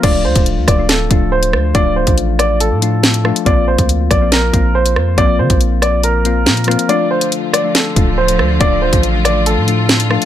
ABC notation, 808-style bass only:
X:1
M:4/4
L:1/16
Q:1/4=140
K:Dm
V:1 name="808-style bass" clef=bass
D,,,2 D,, D,,,2 D,, D,,,4 D,,,4 D,,2 | D,,,3 A,,,6 A,,6 z | B,,,3 D,,3 B,,,4 B,,,4 F,,2 | B,,,2 D, B,,,8- B,,, B,,3 z |
z8 z2 D,,,4 D,,2 | D,,,3 A,,,6 A,,6 z |]